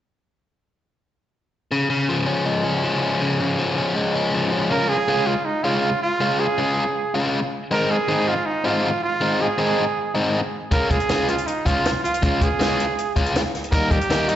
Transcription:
1.71 overdriven electric guitar C#3
1.90 overdriven electric guitar C#3
2.09 overdriven electric guitar F3
2.26 overdriven electric guitar C#4
2.46 overdriven electric guitar G#3
2.64 overdriven electric guitar C#4
2.84 overdriven electric guitar F3
3.02 overdriven electric guitar C#4
3.21 overdriven electric guitar C#3
3.40 overdriven electric guitar C#3
3.58 overdriven electric guitar F3
3.78 overdriven electric guitar C#4
3.96 overdriven electric guitar G#3
4.15 overdriven electric guitar C#4
4.34 overdriven electric guitar F3
4.52 overdriven electric guitar C#4
4.71 overdriven electric guitar C#3 G#3 C#4 F4, trumpet A#4
4.89 trumpet G#4
5.08 overdriven electric guitar C#3 G#3 C#4 F4
5.26 trumpet F4
5.45 trumpet D#4
5.64 overdriven electric guitar C#3 G#3 C#4 F4, trumpet F4
6.02 trumpet F4
6.20 overdriven electric guitar C#3 G#3 C#4 F4
6.39 trumpet G#4
6.58 overdriven electric guitar C#3 G#3 C#4 F4
7.14 overdriven electric guitar C#3 G#3 C#4 F4
7.71 overdriven electric guitar D#3 G#3 C4 D#4, trumpet A#4
7.91 trumpet G#4
8.08 overdriven electric guitar D#3 G#3 C4 D#4
8.28 trumpet F4
8.46 trumpet D#4
8.64 overdriven electric guitar D#3 G#3 C4 D#4, trumpet F4
9.03 trumpet F4
9.21 overdriven electric guitar D#3 G#3 C4 D#4
9.41 trumpet G#4
9.58 overdriven electric guitar D#3 G#3 C4 D#4
10.15 overdriven electric guitar D#3 G#3 C4 D#4
10.71 overdriven electric guitar C#3 G#3 C#4 F4, trumpet A#4, kick, closed hi-hat
10.90 trumpet G#4, kick, closed hi-hat
11.00 closed hi-hat
11.09 overdriven electric guitar C#3 G#3 C#4 F4, snare, closed hi-hat
11.28 trumpet F4, closed hi-hat
11.38 closed hi-hat
11.47 trumpet D#4, closed hi-hat
11.66 overdriven electric guitar C#3 G#3 C#4 F4, trumpet F4, kick, closed hi-hat
11.85 snare, closed hi-hat
12.04 trumpet F4, closed hi-hat
12.14 closed hi-hat
12.22 overdriven electric guitar C#3 G#3 C#4 F4, kick, closed hi-hat
12.42 trumpet G#4, kick, closed hi-hat
12.59 overdriven electric guitar C#3 G#3 C#4 F4, snare, closed hi-hat
12.80 closed hi-hat
12.98 closed hi-hat
13.16 overdriven electric guitar C#3 G#3 C#4 F4, kick, closed hi-hat
13.26 closed hi-hat
13.36 snare, closed hi-hat
13.55 snare, closed hi-hat
13.64 closed hi-hat
13.72 overdriven electric guitar D#3 G3 A#3 D#4, trumpet A#4, kick, closed hi-hat
13.91 trumpet G4, kick, closed hi-hat
14.01 closed hi-hat
14.10 overdriven electric guitar D#3 G3 A#3 D#4, snare, closed hi-hat
14.29 trumpet D#4, closed hi-hat

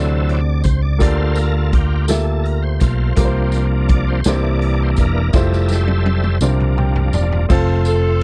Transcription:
Already playing: fingered electric bass D2, grand piano C3 C4 D4 F#4 A4 D5, tonewheel organ F#3 C4 E4 A4
0.29 tonewheel organ D5, closed hi-hat
0.64 fingered electric bass C#2, tonewheel organ C5, kick, closed hi-hat, tambourine
0.82 tonewheel organ D5
0.98 fingered electric bass D2, grand piano D3 A#3 F4 G4 A4 D5, tonewheel organ A#3 F4 A4 C5, kick, closed hi-hat, tambourine
1.35 tonewheel organ A#4, closed hi-hat, tambourine
1.57 tonewheel organ A4
1.73 tonewheel organ G4, kick, closed hi-hat
2.08 grand piano A#3 F4 G4 A4 E5, tonewheel organ A4, snare, closed hi-hat, tambourine
2.44 tonewheel organ A#4, closed hi-hat
2.62 tonewheel organ C5
2.80 fingered electric bass B1, tonewheel organ A3 A#3 F4, kick, closed hi-hat, tambourine
3.14 fingered electric bass C2, grand piano C3 A#3 C4 F4, tonewheel organ F3 A#3 D4, kick, closed hi-hat, tambourine
3.18 grand piano G4 A#4
3.25 grand piano C5
3.52 closed hi-hat, tambourine
3.88 tonewheel organ D5, kick, closed hi-hat
4.08 tonewheel organ C5
4.24 fingered electric bass C2, grand piano C3 A#3 D4 D#4 G4 C5, tonewheel organ E3, snare, closed hi-hat, tambourine
4.28 tonewheel organ A#3 D4 D5
4.33 grand piano E4
4.62 closed hi-hat
4.83 tonewheel organ C5
4.96 fingered electric bass E1, kick, closed hi-hat, tambourine
5.01 tonewheel organ A#4
5.33 fingered electric bass F1, tonewheel organ G3 A4 E5, grand piano A3 E4 F4 G4 C5, kick, snare, tambourine
5.52 snare
5.69 snare, tambourine
5.73 tonewheel organ C5
5.88 high tom
6.06 high tom
6.24 mid tom
6.41 fingered electric bass C2, grand piano C3 A#3 D4 F4 G4 C5, tonewheel organ F3 A#3 D4, mid tom, tambourine
6.60 mid tom
6.78 grand piano G5, mid tom
6.96 floor tom
7.13 fingered electric bass E1, grand piano D5, floor tom, tambourine
7.32 floor tom
7.49 fingered electric bass F1, tonewheel organ A3 C4 F4, grand piano C4 F4 A4, kick, crash, tambourine
7.85 saxophone section A4, ride bell, tambourine

